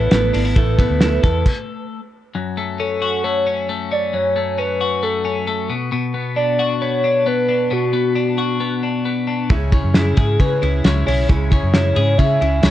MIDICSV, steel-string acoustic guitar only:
0, 0, Header, 1, 2, 480
1, 0, Start_track
1, 0, Tempo, 447094
1, 602, Time_signature, 4, 2, 24, 8
1, 13641, End_track
2, 0, Start_track
2, 0, Title_t, "Steel-string acoustic guitar"
2, 0, Program_c, 0, 25
2, 0, Note_on_c, 0, 59, 45
2, 0, Note_on_c, 0, 64, 51
2, 0, Note_on_c, 0, 69, 58
2, 124, Note_off_c, 0, 69, 0
2, 127, Note_on_c, 0, 57, 60
2, 130, Note_off_c, 0, 59, 0
2, 134, Note_off_c, 0, 64, 0
2, 143, Note_on_c, 0, 59, 67
2, 154, Note_on_c, 0, 64, 60
2, 163, Note_on_c, 0, 69, 68
2, 357, Note_off_c, 0, 69, 0
2, 365, Note_off_c, 0, 57, 0
2, 370, Note_on_c, 0, 69, 54
2, 372, Note_off_c, 0, 59, 0
2, 378, Note_off_c, 0, 64, 0
2, 389, Note_on_c, 0, 64, 53
2, 400, Note_on_c, 0, 59, 46
2, 598, Note_off_c, 0, 59, 0
2, 603, Note_on_c, 0, 57, 75
2, 606, Note_off_c, 0, 69, 0
2, 607, Note_off_c, 0, 64, 0
2, 611, Note_on_c, 0, 59, 75
2, 620, Note_on_c, 0, 64, 84
2, 627, Note_on_c, 0, 69, 93
2, 834, Note_off_c, 0, 69, 0
2, 842, Note_off_c, 0, 57, 0
2, 846, Note_off_c, 0, 59, 0
2, 847, Note_on_c, 0, 69, 61
2, 851, Note_off_c, 0, 64, 0
2, 865, Note_on_c, 0, 64, 47
2, 878, Note_on_c, 0, 59, 46
2, 1082, Note_on_c, 0, 57, 60
2, 1083, Note_off_c, 0, 59, 0
2, 1084, Note_off_c, 0, 69, 0
2, 1093, Note_off_c, 0, 64, 0
2, 1096, Note_on_c, 0, 59, 66
2, 1107, Note_on_c, 0, 64, 64
2, 1117, Note_on_c, 0, 69, 70
2, 1301, Note_off_c, 0, 69, 0
2, 1314, Note_on_c, 0, 69, 59
2, 1319, Note_off_c, 0, 64, 0
2, 1321, Note_off_c, 0, 57, 0
2, 1328, Note_off_c, 0, 59, 0
2, 1332, Note_on_c, 0, 64, 51
2, 1350, Note_on_c, 0, 59, 48
2, 1557, Note_off_c, 0, 69, 0
2, 1566, Note_off_c, 0, 64, 0
2, 1575, Note_off_c, 0, 59, 0
2, 10198, Note_on_c, 0, 49, 85
2, 10202, Note_on_c, 0, 56, 92
2, 10207, Note_on_c, 0, 61, 94
2, 10215, Note_on_c, 0, 64, 90
2, 10219, Note_on_c, 0, 68, 99
2, 10424, Note_off_c, 0, 68, 0
2, 10437, Note_on_c, 0, 68, 63
2, 10439, Note_off_c, 0, 49, 0
2, 10441, Note_off_c, 0, 56, 0
2, 10441, Note_off_c, 0, 64, 0
2, 10443, Note_off_c, 0, 61, 0
2, 10453, Note_on_c, 0, 64, 59
2, 10473, Note_on_c, 0, 61, 46
2, 10676, Note_on_c, 0, 56, 56
2, 10678, Note_off_c, 0, 61, 0
2, 10678, Note_off_c, 0, 68, 0
2, 10687, Note_off_c, 0, 64, 0
2, 10691, Note_on_c, 0, 61, 61
2, 10702, Note_on_c, 0, 64, 68
2, 10712, Note_on_c, 0, 68, 62
2, 10908, Note_off_c, 0, 68, 0
2, 10918, Note_off_c, 0, 56, 0
2, 10921, Note_on_c, 0, 68, 53
2, 10925, Note_off_c, 0, 61, 0
2, 10925, Note_off_c, 0, 64, 0
2, 10938, Note_on_c, 0, 64, 52
2, 10953, Note_on_c, 0, 61, 44
2, 11160, Note_on_c, 0, 49, 77
2, 11161, Note_off_c, 0, 68, 0
2, 11162, Note_off_c, 0, 61, 0
2, 11166, Note_off_c, 0, 64, 0
2, 11169, Note_on_c, 0, 56, 80
2, 11175, Note_on_c, 0, 61, 84
2, 11179, Note_on_c, 0, 64, 79
2, 11184, Note_on_c, 0, 68, 83
2, 11382, Note_off_c, 0, 68, 0
2, 11395, Note_on_c, 0, 68, 58
2, 11400, Note_off_c, 0, 64, 0
2, 11401, Note_off_c, 0, 49, 0
2, 11405, Note_off_c, 0, 56, 0
2, 11408, Note_off_c, 0, 61, 0
2, 11413, Note_on_c, 0, 64, 52
2, 11425, Note_on_c, 0, 61, 43
2, 11636, Note_on_c, 0, 56, 62
2, 11638, Note_off_c, 0, 68, 0
2, 11640, Note_off_c, 0, 61, 0
2, 11647, Note_off_c, 0, 64, 0
2, 11653, Note_on_c, 0, 61, 64
2, 11660, Note_on_c, 0, 64, 68
2, 11671, Note_on_c, 0, 68, 63
2, 11864, Note_off_c, 0, 68, 0
2, 11877, Note_on_c, 0, 68, 60
2, 11879, Note_off_c, 0, 56, 0
2, 11881, Note_off_c, 0, 64, 0
2, 11887, Note_off_c, 0, 61, 0
2, 11894, Note_on_c, 0, 64, 51
2, 11913, Note_on_c, 0, 61, 47
2, 12113, Note_on_c, 0, 49, 75
2, 12118, Note_off_c, 0, 61, 0
2, 12120, Note_off_c, 0, 68, 0
2, 12123, Note_off_c, 0, 64, 0
2, 12123, Note_on_c, 0, 56, 89
2, 12131, Note_on_c, 0, 61, 86
2, 12136, Note_on_c, 0, 64, 85
2, 12138, Note_on_c, 0, 68, 90
2, 12336, Note_off_c, 0, 68, 0
2, 12348, Note_on_c, 0, 68, 57
2, 12358, Note_off_c, 0, 49, 0
2, 12359, Note_off_c, 0, 64, 0
2, 12363, Note_off_c, 0, 56, 0
2, 12367, Note_off_c, 0, 61, 0
2, 12372, Note_on_c, 0, 64, 58
2, 12383, Note_on_c, 0, 61, 50
2, 12587, Note_on_c, 0, 56, 57
2, 12591, Note_off_c, 0, 61, 0
2, 12596, Note_off_c, 0, 68, 0
2, 12599, Note_off_c, 0, 64, 0
2, 12604, Note_on_c, 0, 61, 66
2, 12612, Note_on_c, 0, 64, 62
2, 12622, Note_on_c, 0, 68, 67
2, 12816, Note_off_c, 0, 68, 0
2, 12828, Note_on_c, 0, 68, 54
2, 12833, Note_off_c, 0, 64, 0
2, 12835, Note_off_c, 0, 56, 0
2, 12843, Note_off_c, 0, 61, 0
2, 12846, Note_on_c, 0, 64, 53
2, 12860, Note_on_c, 0, 61, 48
2, 13070, Note_off_c, 0, 61, 0
2, 13072, Note_on_c, 0, 49, 87
2, 13076, Note_off_c, 0, 68, 0
2, 13079, Note_off_c, 0, 64, 0
2, 13080, Note_on_c, 0, 56, 80
2, 13083, Note_on_c, 0, 61, 78
2, 13092, Note_on_c, 0, 64, 85
2, 13094, Note_on_c, 0, 68, 94
2, 13298, Note_off_c, 0, 68, 0
2, 13311, Note_on_c, 0, 68, 61
2, 13318, Note_off_c, 0, 49, 0
2, 13321, Note_off_c, 0, 64, 0
2, 13322, Note_off_c, 0, 56, 0
2, 13324, Note_off_c, 0, 61, 0
2, 13334, Note_on_c, 0, 64, 53
2, 13349, Note_on_c, 0, 61, 46
2, 13546, Note_on_c, 0, 56, 67
2, 13547, Note_off_c, 0, 61, 0
2, 13557, Note_off_c, 0, 64, 0
2, 13558, Note_off_c, 0, 68, 0
2, 13560, Note_on_c, 0, 61, 70
2, 13570, Note_on_c, 0, 64, 69
2, 13581, Note_on_c, 0, 68, 69
2, 13641, Note_off_c, 0, 56, 0
2, 13641, Note_off_c, 0, 61, 0
2, 13641, Note_off_c, 0, 64, 0
2, 13641, Note_off_c, 0, 68, 0
2, 13641, End_track
0, 0, End_of_file